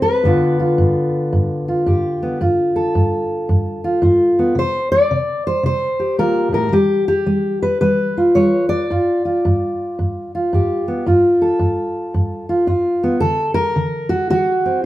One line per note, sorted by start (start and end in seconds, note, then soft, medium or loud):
0.00 0.20 C3 medium
0.00 0.21 C4 soft
0.00 1.85 B4 medium
0.24 0.73 G2 medium
0.24 4.57 D3 medium
0.24 2.21 B3 soft
0.24 0.59 F4 soft
0.59 1.67 F4 soft
0.78 1.28 G2 medium
1.33 1.82 G2 medium
1.68 2.38 F4 soft
1.86 2.36 G2 medium
1.86 2.44 G4 soft
2.23 2.38 B3 soft
2.41 2.90 G2 medium
2.41 3.83 F4 medium
2.76 4.02 A4 medium
2.95 3.45 G2 medium
3.49 3.99 G2 medium
3.84 4.01 F4 medium
4.02 4.52 G2 medium
4.02 4.54 F4 medium
4.39 4.55 B3 medium
4.55 5.06 C3 medium
4.55 4.91 C5 loud
4.92 5.45 D5 loud
5.11 5.61 C3 medium
5.47 5.65 C5 medium
5.63 6.14 C3 medium
5.63 6.19 C5 loud
6.00 6.73 G4 soft
6.18 6.52 A#2 medium
6.18 6.53 A#4 medium
6.52 6.72 A2 medium
6.52 6.73 A#4 medium
6.72 7.23 G3 medium
6.72 7.07 G4 medium
7.08 7.62 G4 medium
7.26 7.77 G3 medium
7.62 7.80 B4 medium
7.81 8.31 G3 medium
7.81 8.89 B4 loud
8.17 8.91 F4 soft
8.35 8.86 G3 medium
8.35 8.69 C#5 medium
8.69 10.51 D5 medium
8.90 9.40 G2 medium
8.90 9.25 F4 medium
9.25 10.32 F4 soft
9.45 9.94 G2 medium
9.99 10.48 G2 medium
10.35 11.05 F4 soft
10.53 11.02 G2 medium
10.53 11.04 G4 soft
10.88 11.04 B3 soft
11.06 11.56 G2 medium
11.06 12.48 F4 medium
11.42 12.67 A4 medium
11.59 12.10 G2 medium
12.14 12.64 G2 medium
12.49 12.66 F4 medium
12.67 13.18 G2 medium
12.67 13.19 F4 medium
13.03 13.20 B3 medium
13.20 13.72 D3 medium
13.20 13.54 A4 loud
13.54 14.09 A#4 loud
13.76 14.26 D3 medium
14.09 14.29 F#4 medium
14.30 14.80 D3 medium
14.30 14.84 F#4 loud
14.65 14.85 C4 soft